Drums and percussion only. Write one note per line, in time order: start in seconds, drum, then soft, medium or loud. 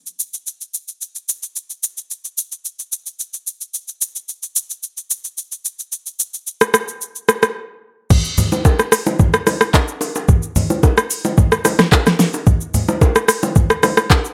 0.06 shaker medium
0.20 shaker loud
0.34 shaker medium
0.47 shaker medium
0.61 shaker soft
0.74 shaker medium
0.88 shaker medium
1.01 shaker medium
1.15 shaker soft
1.29 shaker medium
1.43 shaker medium
1.56 shaker medium
1.70 shaker soft
1.83 shaker loud
1.97 shaker soft
2.11 shaker medium
2.25 shaker medium
2.38 shaker loud
2.52 shaker medium
2.65 shaker medium
2.79 shaker medium
2.92 shaker medium
3.06 shaker soft
3.19 shaker medium
3.34 shaker medium
3.47 shaker medium
3.61 shaker medium
3.74 shaker medium
3.88 shaker medium
4.01 shaker loud
4.16 shaker soft
4.29 shaker medium
4.43 shaker medium
4.56 shaker loud
4.70 shaker medium
4.83 shaker medium
4.97 shaker medium
5.10 shaker medium
5.24 shaker soft
5.38 shaker medium
5.52 shaker medium
5.65 shaker medium
5.79 shaker medium
5.92 shaker medium
6.06 shaker soft
6.20 shaker loud
6.34 shaker medium
6.47 shaker medium
6.61 cross-stick medium
6.61 shaker medium
6.74 cross-stick loud
6.74 shaker loud
6.88 shaker medium
7.01 shaker medium
7.16 shaker medium
7.29 cross-stick medium
7.29 shaker medium
7.43 cross-stick medium
7.43 shaker medium
8.10 kick loud
8.10 crash loud
8.10 low conga medium
8.10 shaker medium
8.24 shaker medium
8.38 open hi-hat medium
8.38 low conga medium
8.38 shaker loud
8.52 low bongo medium
8.52 shaker medium
8.65 kick medium
8.65 high bongo medium
8.65 shaker medium
8.79 cross-stick medium
8.79 shaker medium
8.92 cross-stick loud
8.92 open hi-hat medium
8.92 shaker loud
9.06 low bongo medium
9.06 shaker medium
9.19 kick loud
9.19 low conga medium
9.19 shaker medium
9.34 cross-stick loud
9.34 shaker medium
9.47 cross-stick medium
9.47 open hi-hat medium
9.47 low bongo medium
9.47 shaker loud
9.61 cross-stick loud
9.61 shaker medium
9.74 kick loud
9.74 clap loud
9.74 high bongo medium
9.74 shaker medium
9.88 shaker medium
10.01 open hi-hat medium
10.01 high bongo medium
10.01 shaker loud
10.15 high bongo medium
10.15 shaker medium
10.28 kick loud
10.28 low conga medium
10.28 shaker medium
10.43 shaker medium
10.56 open hi-hat medium
10.56 low conga medium
10.56 shaker loud
10.70 low bongo medium
10.70 shaker medium
10.83 kick medium
10.83 high bongo medium
10.83 shaker medium
10.97 cross-stick loud
10.97 shaker medium
11.10 open hi-hat medium
11.10 shaker loud
11.25 low bongo medium
11.25 shaker medium
11.38 kick loud
11.38 low conga medium
11.38 shaker medium
11.52 cross-stick loud
11.52 shaker medium
11.65 cross-stick medium
11.65 open hi-hat medium
11.65 low bongo medium
11.65 shaker loud
11.79 cross-stick loud
11.79 snare medium
11.79 shaker medium
11.92 kick loud
11.92 clap loud
11.92 high bongo medium
11.92 shaker medium
12.06 cross-stick medium
12.06 snare medium
12.06 shaker medium
12.19 snare medium
12.19 open hi-hat medium
12.19 high bongo medium
12.19 shaker medium
12.34 high bongo medium
12.34 shaker medium
12.47 kick loud
12.47 low conga medium
12.47 shaker medium
12.61 shaker medium
12.74 open hi-hat medium
12.74 low conga medium
12.74 shaker loud
12.88 low bongo medium
12.88 shaker medium
13.01 kick medium
13.01 high bongo medium
13.01 shaker medium
13.16 cross-stick loud
13.16 shaker medium
13.28 cross-stick loud
13.28 open hi-hat medium
13.28 shaker loud
13.43 low bongo medium
13.43 shaker medium
13.56 kick loud
13.56 low conga medium
13.56 shaker medium
13.70 cross-stick loud
13.70 shaker medium
13.83 cross-stick loud
13.83 open hi-hat medium
13.83 low bongo medium
13.83 shaker loud
13.97 cross-stick loud
13.97 shaker medium
14.10 kick loud
14.10 clap loud
14.10 high bongo medium
14.10 shaker medium
14.25 shaker medium